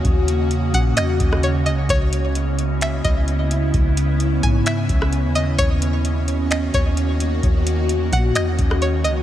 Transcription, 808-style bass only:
X:1
M:4/4
L:1/16
Q:1/4=130
K:D#phr
V:1 name="808-style bass" clef=bass
D,,4 E,,2 A,,2 E,,2 D,,4 C,,2 | C,,8- C,,2 C,,6 | C,,6 G,,4 C,,3 D,,3 | D,,8- D,,2 D,,6 |
D,,4 E,,2 A,,2 E,,2 D,,4 C,,2 |]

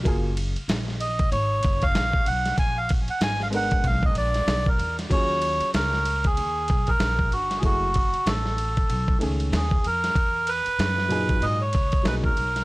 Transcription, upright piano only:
X:1
M:4/4
L:1/8
Q:"Swing 16ths" 1/4=95
K:Ebm
V:1 name="Upright piano"
[G,B,FA] z6 z | z3 [A,C=DB]3 z2 | [G,DFA]3 z4 z | [G,=A,_F_A] z4 [^D,=A,^C^G] z2 |
z3 [^A,,^F,^D^G] z2 [F,^A,DG] z |]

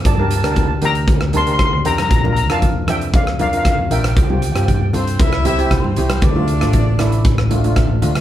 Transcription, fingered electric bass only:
X:1
M:4/4
L:1/16
Q:1/4=117
K:Gdor
V:1 name="Fingered electric bass" clef=bass
G,,3 D,,3 D,,6- D,, D,, F,,2 | B,,,3 F,,3 F,,6- F,, F,, B,,,2 | C,,3 G,,3 G,,2 C,,4- C,, G,, C,,2 | D,,3 A,,,3 A,,,6- A,,, A,,, D,,2 |]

